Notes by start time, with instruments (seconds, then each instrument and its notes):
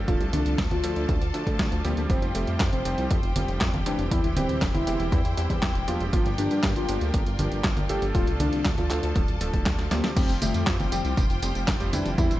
Already playing: electric grand piano F3 A3 D4 A4
0.08 analog synth bass D1, soft synth lead F4, string section F4 A4 D5 A5, kick, closed hi-hat
0.20 analog synth bass C2, closed hi-hat
0.33 analog synth bass C2, electric grand piano F3 A3 D4 A4, soft synth lead D4, closed hi-hat, high conga
0.46 analog synth bass C2, closed hi-hat
0.58 analog synth bass D2, kick, snare, closed hi-hat
0.71 analog synth bass D2, soft synth lead F4, closed hi-hat, high conga
0.84 analog synth bass D2, electric grand piano F3 A3 D4 A4, closed hi-hat
0.96 analog synth bass D2, closed hi-hat
1.09 analog synth bass D2, kick, closed hi-hat
1.21 analog synth bass D2, closed hi-hat
1.34 analog synth bass D2, electric grand piano F3 A3 D4 A4, closed hi-hat
1.47 analog synth bass D2, kick, closed hi-hat
1.59 analog synth bass D2, kick, snare, closed hi-hat
1.72 analog synth bass D2, closed hi-hat
1.84 analog synth bass D2, electric grand piano F3 G3 C4 G4, soft synth lead A#3, closed hi-hat
1.97 analog synth bass D2, closed hi-hat
2.09 analog synth bass F1, soft synth lead C4, string section G4 C5 G5, kick, closed hi-hat
2.22 analog synth bass F1, closed hi-hat
2.35 analog synth bass F1, electric grand piano F3 G3 C4 G4, soft synth lead A3, closed hi-hat
2.47 analog synth bass F2, closed hi-hat
2.60 analog synth bass F2, kick, snare, clap, closed hi-hat
2.73 analog synth bass F1, soft synth lead C4, closed hi-hat
2.85 analog synth bass F1, electric grand piano F3 G3 C4 G4, closed hi-hat
2.98 analog synth bass C2, closed hi-hat
3.11 analog synth bass F1, kick, closed hi-hat
3.23 analog synth bass F1, closed hi-hat
3.36 analog synth bass F1, electric grand piano F3 G3 C4 G4, closed hi-hat, high conga
3.48 analog synth bass F1, closed hi-hat
3.61 analog synth bass F1, kick, snare, clap, closed hi-hat
3.74 analog synth bass F1, closed hi-hat, high conga
3.86 analog synth bass F1, electric grand piano E3 G3 C4 G4, soft synth lead D4, closed hi-hat
3.99 analog synth bass F1, closed hi-hat
4.11 analog synth bass E2, soft synth lead E4, string section E4 C5, kick, closed hi-hat
4.24 analog synth bass D1, closed hi-hat
4.37 analog synth bass D1, electric grand piano E3 G3 C4 G4, soft synth lead C4, closed hi-hat, high conga
4.49 analog synth bass D1, closed hi-hat
4.62 analog synth bass E1, kick, snare, clap, closed hi-hat
4.74 analog synth bass E1, soft synth lead E4, closed hi-hat, high conga
4.87 analog synth bass E1, electric grand piano E3 G3 C4 G4, closed hi-hat
5.00 analog synth bass E1, closed hi-hat
5.12 analog synth bass E2, kick, closed hi-hat
5.25 analog synth bass E2, closed hi-hat
5.37 analog synth bass E2, electric grand piano E3 G3 C4 G4, closed hi-hat
5.50 analog synth bass E2, kick, closed hi-hat
5.63 analog synth bass E1, kick, snare, clap, closed hi-hat
5.75 analog synth bass E1, closed hi-hat
5.88 analog synth bass E1, electric grand piano F3 A#3 D4 G4, soft synth lead F4, closed hi-hat
6.00 analog synth bass E1, closed hi-hat
6.13 analog synth bass G1, soft synth lead F4, string section F4 A#4 D5, kick, closed hi-hat
6.26 analog synth bass G1, closed hi-hat
6.38 analog synth bass G1, electric grand piano F3 A#3 D4 G4, soft synth lead D4, closed hi-hat
6.51 analog synth bass G2, closed hi-hat
6.63 analog synth bass G2, kick, snare, clap, closed hi-hat
6.76 analog synth bass G1, soft synth lead F4, closed hi-hat
6.89 analog synth bass G1, electric grand piano F3 A#3 D4 G4, closed hi-hat
7.01 analog synth bass D2, closed hi-hat
7.14 analog synth bass G1, kick, closed hi-hat
7.26 analog synth bass G1, closed hi-hat
7.39 analog synth bass G1, electric grand piano F3 A#3 D4 G4, closed hi-hat, high conga
7.52 analog synth bass G1, closed hi-hat
7.64 analog synth bass G1, kick, snare, clap, closed hi-hat
7.77 analog synth bass G1, closed hi-hat, high conga
7.89 analog synth bass G1, electric grand piano F3 A3 D4 A4, soft synth lead G4, closed hi-hat
8.02 analog synth bass G1, closed hi-hat
8.15 analog synth bass D1, soft synth lead F4, string section A4 A5, kick, closed hi-hat
8.27 analog synth bass C2, closed hi-hat
8.40 analog synth bass C2, electric grand piano F3 A3 D4 A4, soft synth lead D4, closed hi-hat, high conga
8.53 analog synth bass C2, closed hi-hat
8.65 analog synth bass D2, kick, snare, clap, closed hi-hat
8.78 analog synth bass D2, soft synth lead F4, closed hi-hat, high conga
8.90 analog synth bass D2, electric grand piano F3 A3 D4 A4, clap, closed hi-hat
9.03 analog synth bass D2, closed hi-hat
9.16 analog synth bass D1, kick, closed hi-hat
9.28 analog synth bass D1, closed hi-hat
9.41 analog synth bass D1, electric grand piano F3 A3 D4 A4, closed hi-hat
9.53 analog synth bass D1, kick, closed hi-hat
9.66 analog synth bass D2, kick, snare, clap, closed hi-hat
9.79 analog synth bass D2, snare, closed hi-hat
9.91 analog synth bass D2, electric grand piano F3 G3 C4 G4, soft synth lead A#3, snare, closed hi-hat
10.04 analog synth bass D2, snare, closed hi-hat
10.16 analog synth bass F1, soft synth lead C4, string section F4 G4 C5 G5, kick, closed hi-hat, crash, tambourine
10.29 analog synth bass F1, closed hi-hat, tambourine
10.42 analog synth bass F1, electric grand piano F3 G3 C4 G4, soft synth lead A3, closed hi-hat, tambourine, high conga
10.54 analog synth bass F2, closed hi-hat, tambourine
10.67 analog synth bass F2, kick, snare, clap, closed hi-hat, tambourine
10.80 analog synth bass F1, soft synth lead C4, closed hi-hat, tambourine, high conga
10.92 analog synth bass F1, electric grand piano F3 G3 C4 G4, closed hi-hat, tambourine
11.05 analog synth bass C2, closed hi-hat, tambourine
11.17 analog synth bass F1, kick, closed hi-hat, tambourine
11.30 analog synth bass F1, closed hi-hat, tambourine
11.42 analog synth bass F1, electric grand piano F3 G3 C4 G4, closed hi-hat, tambourine
11.55 analog synth bass F1, closed hi-hat, tambourine
11.68 analog synth bass F1, kick, snare, clap, closed hi-hat, tambourine
11.80 analog synth bass F1, electric grand piano F3 G3 C4 G4, closed hi-hat, tambourine
11.93 analog synth bass F1, electric grand piano E3 G3 C4 E4, soft synth lead D4, closed hi-hat, tambourine, high conga
12.05 analog synth bass F1, closed hi-hat, tambourine
12.18 analog synth bass E2, soft synth lead E4, string section E4 G4 G5, kick, closed hi-hat, tambourine
12.31 analog synth bass D1, closed hi-hat, tambourine